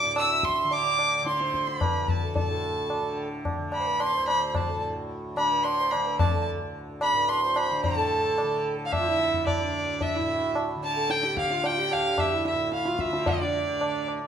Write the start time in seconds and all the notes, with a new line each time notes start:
Already playing: D2 D3 D6
0.02 A2 D5
0.16 E6, tabla na
0.31 E5
0.43 C6, tabla ke
0.64 D3
0.71 D6, tabla tin
0.79 E5
0.85 D5
0.99 tabla na
1.23 D3, tabla te
1.27 C6
1.34 D5
1.41 C5, tabla te
1.54 tabla ke
1.67 C6, tabla te
1.75 C5 B5
1.81 D2 B4, tabla na, tabla ge
2.08 A5, tabla ge
2.23 A4
2.36 A5, tabla tin, tabla ge
2.40 A2
2.50 A4
2.90 tabla na
3.01 D3
3.45 tabla na, tabla ge
3.58 D3
3.72 B5, tabla na
3.79 C5
3.86 B4
4.00 C6, tabla na
4.08 D5
4.15 D2 C5
4.28 B5, tabla na
4.49 B5
4.55 A5, tabla na, tabla ge
4.68 A4
4.76 A2
5.34 D3 B5, tabla na
5.51 B4
5.63 C6, tabla na
5.79 C5
5.91 D3 B5, tabla na
6.05 B4
6.19 A5, tabla na, tabla ge
6.33 A4
6.52 D2
7.01 B5, tabla na
7.13 A2 B4
7.29 C6, tabla na
7.43 C5
7.56 B5, tabla na
7.71 D3
7.83 A2 A5, tabla tin, tabla ge
7.97 A4
8.38 tabla na
8.43 D3
8.86 F5
8.92 E5, tabla na, tabla ge
9.00 D3 F4
9.06 E4
9.19 tabla te
9.33 tabla ge
9.47 D5, tabla na, tabla ge
9.60 D2 D4
10.01 E5, tabla tin, tabla ge
10.15 A2 E4
10.55 tabla na
10.76 D3
10.83 A5
10.97 A4
11.10 G5, tabla te
11.23 G4, tabla te
11.34 D3, tabla ke
11.38 F5
11.50 F4, tabla te
11.64 G5, tabla tin
11.77 G4
11.91 D2 F5, tabla na
12.18 E5, tabla na, tabla ge
12.32 E4
12.45 E5, tabla te
12.53 A2
12.72 F5, tabla te
12.85 F4, tabla te
12.99 E5, tabla ke
13.10 D3, tabla te
13.26 D5, tabla tin, tabla ge
13.41 D4
13.68 D3
13.81 tabla na
14.08 tabla na